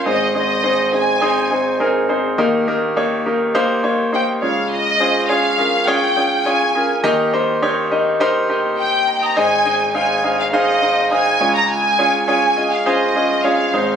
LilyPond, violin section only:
\new Staff \with { instrumentName = "Violin section" } { \time 4/4 \key aes \major \tempo 4 = 103 ees''8 ees''4 aes''4. r4 | r2. g''8 f''8 | ees''4 f''4 g''4 aes''8. r16 | r2. g''8. bes''16 |
aes''4 aes''8. f''16 ees''4 aes''8. bes''16 | aes''4 aes''8. f''16 ees''4 f''8. r16 | }